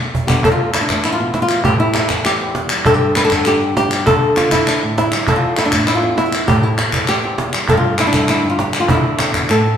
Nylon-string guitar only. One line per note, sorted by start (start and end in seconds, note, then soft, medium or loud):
0.27 0.43 D3 soft
0.27 0.43 G3 soft
0.27 0.43 B3 soft
0.27 0.43 G4 soft
0.44 1.65 E2 medium
0.44 0.51 A4 medium
0.52 0.73 F4 medium
0.74 1.03 E4 medium
0.81 1.19 D4 medium
0.89 1.63 E3 soft
0.89 1.64 A3 soft
1.04 1.12 E4 medium
1.12 1.34 F4 medium
1.20 1.63 B2 medium
1.20 1.65 B3 soft
1.34 1.42 E4 medium
1.42 1.64 F4 medium
1.65 2.41 A2 medium
1.65 2.09 E3 soft
1.65 2.71 G3 soft
1.65 2.40 C4 soft
1.65 1.79 G4 medium
1.80 2.25 E4 medium
2.10 2.84 E3 medium
2.25 2.86 G4 medium
2.40 2.85 E2 soft
2.40 2.84 C4 soft
2.72 2.86 G3 soft
2.85 4.05 G2 medium
2.85 3.30 D3 soft
2.85 4.05 C4 soft
2.85 3.31 D4 soft
2.85 2.94 A4 loud
2.94 3.16 G4 medium
3.16 3.24 B4 medium
3.25 3.46 A4 medium
3.31 3.61 D3 medium
3.31 4.05 D4 soft
3.47 3.76 G4 medium
3.62 4.05 D3 soft
3.77 4.06 G4 medium
4.07 4.51 D3 medium
4.07 4.51 A4 loud
4.37 4.52 F4 medium
4.51 5.26 D3 medium
4.51 4.96 E4 medium
4.67 5.27 D4 medium
4.83 5.26 A2 medium
4.98 5.28 E4 medium
5.13 5.28 G3 soft
5.28 5.73 E2 medium
5.28 5.58 A4 medium
5.36 5.58 F4 medium
5.58 5.86 E4 medium
5.65 5.95 D4 medium
5.73 6.03 A2 medium
5.87 6.16 E4 medium
5.95 6.18 F4 medium
6.03 6.48 E2 soft
6.03 6.46 B3 soft
6.17 6.47 E4 medium
6.25 6.48 F4 medium
6.48 7.23 A2 medium
6.48 6.63 G4 medium
6.63 7.08 E4 medium
6.93 7.67 E3 medium
7.09 7.69 G4 medium
7.23 7.68 E2 medium
7.23 7.67 C4 soft
7.54 8.13 G3 soft
7.69 8.43 G2 medium
7.69 7.76 A4 medium
7.77 7.99 F4 medium
8.00 8.28 E4 medium
8.07 8.59 D4 medium
8.14 8.87 D3 medium
8.14 8.89 G3 soft
8.29 8.49 E4 medium
8.44 8.87 G2 medium
8.50 8.59 F4 medium
8.60 8.79 G4 medium
8.80 8.89 F4 medium
8.89 9.49 D3 medium
8.89 9.50 E4 medium
9.20 9.34 C3 medium
9.34 9.49 B2 medium
9.50 9.77 A2 medium
9.50 9.77 A4 medium